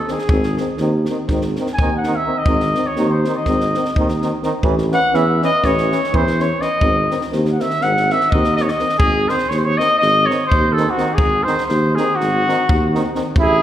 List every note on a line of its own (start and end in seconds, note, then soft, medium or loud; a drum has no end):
0.00 0.11 A4 medium
0.08 0.17 D#3 medium
0.08 0.16 C4 medium
0.08 snare soft
0.13 0.77 G#4 medium
0.19 snare soft
0.29 0.57 G#1 loud
0.29 0.43 D#3 medium
0.29 0.42 C4 medium
0.29 kick loud
0.43 snare soft
0.58 0.67 D#3 medium
0.58 0.67 C4 medium
0.58 snare soft
0.78 1.07 D#2 loud
0.78 0.91 D#3 medium
0.78 0.91 C4 medium
0.78 snare soft
1.05 1.18 D#3 medium
1.05 1.17 C4 medium
1.05 snare soft
1.28 1.57 G#1 loud
1.28 1.42 D#3 medium
1.28 1.42 C4 medium
1.28 kick medium
1.28 snare soft
1.41 snare soft
1.56 1.68 D#3 medium
1.56 1.67 C4 medium
1.56 snare soft
1.67 snare soft
1.74 1.93 G#5 medium
1.79 2.17 D#2 medium
1.79 1.90 D#3 medium
1.79 1.91 C4 medium
1.79 kick medium
1.97 2.17 F#5 medium
2.04 2.14 D#3 medium
2.04 2.15 C4 medium
2.04 snare soft
2.16 2.40 E5 loud
2.26 2.34 D#3 medium
2.26 2.35 C4 medium
2.38 2.88 D#5 medium
2.46 2.75 G#1 medium
2.46 2.59 D#3 medium
2.46 2.58 C4 medium
2.46 kick loud
2.60 snare soft
2.75 2.85 D#3 medium
2.75 2.84 C4 medium
2.75 snare soft
2.87 3.13 C#5 medium
2.96 3.24 D#2 loud
2.96 3.08 D#3 medium
2.96 3.08 C4 medium
2.96 snare soft
3.11 3.38 C5 medium
3.25 3.35 D#3 medium
3.25 3.34 C4 medium
3.25 snare soft
3.36 4.10 D#5 medium
3.46 3.74 G#1 medium
3.46 3.58 D#3 medium
3.46 3.58 C4 medium
3.46 kick medium
3.46 snare soft
3.60 snare soft
3.74 3.84 D#3 medium
3.74 3.84 C4 medium
3.74 snare soft
3.85 snare soft
3.96 4.33 D#2 medium
3.96 4.08 D#3 medium
3.96 4.08 C4 medium
3.96 kick medium
4.08 snare soft
4.22 4.30 D#3 medium
4.22 4.30 C4 medium
4.22 snare soft
4.43 4.51 D#3 medium
4.43 4.51 C4 medium
4.43 snare soft
4.62 4.91 A1 loud
4.62 4.74 E3 medium
4.62 4.75 C#4 medium
4.62 kick medium
4.78 snare soft
4.91 5.00 E3 medium
4.91 5.00 C#4 medium
4.91 5.17 F#5 loud
4.91 snare soft
5.12 5.41 E2 loud
5.12 5.24 E3 medium
5.12 5.24 C#4 medium
5.12 5.43 E5 medium
5.12 snare soft
5.42 5.50 E3 medium
5.42 5.50 C#4 medium
5.42 5.67 D#5 loud
5.42 snare soft
5.63 5.91 A1 loud
5.63 5.75 E3 medium
5.63 5.75 C#4 medium
5.63 6.17 C#5 loud
5.63 kick medium
5.63 snare soft
5.78 snare soft
5.91 6.00 E3 medium
5.91 6.01 C#4 medium
5.91 snare soft
6.04 snare soft
6.13 6.51 E2 medium
6.13 6.23 E3 medium
6.13 6.24 C#4 medium
6.13 6.43 C5 loud
6.13 kick medium
6.27 snare soft
6.38 6.47 E3 medium
6.38 6.48 C#4 medium
6.38 6.63 C#5 medium
6.38 snare soft
6.59 6.67 E3 medium
6.59 6.69 C#4 medium
6.59 7.32 D#5 loud
6.59 snare soft
6.81 7.09 G#1 loud
6.81 6.92 D#3 medium
6.81 6.93 C4 medium
6.81 kick medium
7.10 7.18 D#3 medium
7.10 7.18 C4 medium
7.10 snare soft
7.21 snare soft
7.31 7.60 D#2 loud
7.31 7.43 D#3 medium
7.31 7.43 C4 medium
7.31 snare soft
7.45 snare soft
7.52 7.62 F#5 medium
7.59 7.68 D#3 medium
7.59 7.68 C4 medium
7.59 7.84 E5 loud
7.59 snare soft
7.70 snare soft
7.81 8.11 G#1 loud
7.81 7.93 D#3 medium
7.81 7.93 C4 medium
7.81 8.13 F#5 loud
7.81 snare soft
7.97 snare soft
8.10 8.19 D#3 medium
8.10 8.20 C4 medium
8.10 8.32 E5 loud
8.10 snare soft
8.21 snare soft
8.31 8.71 D#2 loud
8.31 8.42 D#3 medium
8.31 8.43 C4 medium
8.31 8.56 D#5 medium
8.31 kick medium
8.44 snare soft
8.56 8.67 D#3 medium
8.56 8.66 C4 soft
8.56 8.63 D#5 medium
8.56 snare soft
8.62 8.71 C#5 medium
8.68 8.98 D#5 medium
8.68 snare soft
8.79 8.87 D#3 medium
8.79 8.87 C4 medium
8.79 snare soft
8.89 snare soft
8.98 9.28 G#1 loud
8.98 9.30 G#4 loud
8.98 kick loud
9.28 9.37 D#3 medium
9.28 9.38 C4 medium
9.28 9.51 C5 loud
9.28 snare soft
9.38 snare soft
9.49 9.78 D#2 loud
9.49 9.60 C#5 medium
9.49 snare soft
9.59 9.66 C5 medium
9.65 9.79 C#5 loud
9.78 9.88 D#3 medium
9.78 9.88 C4 medium
9.78 9.98 D#5 loud
9.78 snare soft
9.98 10.29 G#1 loud
9.98 10.28 D#5 loud
9.98 snare soft
10.26 10.37 D#3 medium
10.26 10.38 C4 medium
10.26 10.46 C#5 medium
10.31 snare soft
10.46 10.74 C5 loud
10.52 10.89 D#2 loud
10.52 kick loud
10.72 10.92 A4 medium
10.77 10.86 D#3 medium
10.77 10.85 C4 medium
10.77 snare soft
10.90 11.16 F#4 medium
10.97 11.06 D#3 medium
10.97 11.06 C4 medium
10.97 snare soft
11.14 11.45 G#4 loud
11.14 kick loud
11.20 11.47 G#1 medium
11.44 11.55 D#3 medium
11.44 11.55 C4 medium
11.44 11.66 C5 loud
11.44 snare soft
11.58 snare soft
11.66 11.97 D#2 loud
11.66 11.97 C5 medium
11.66 snare soft
11.96 12.06 D#3 medium
11.96 12.06 C4 medium
11.96 12.17 G#4 medium
11.96 snare soft
12.16 13.14 F#4 loud
12.21 12.48 G#1 medium
12.21 snare soft
12.47 12.56 D#3 medium
12.47 12.56 C4 medium
12.47 snare soft
12.69 13.06 D#2 loud
12.69 kick loud
12.94 13.02 D#3 medium
12.94 13.04 C4 medium
12.94 snare soft
13.14 13.23 D#3 medium
13.14 13.24 C4 medium
13.14 snare soft
13.36 13.62 A1 medium
13.36 13.62 E4 loud
13.36 13.62 G#4 loud
13.36 kick loud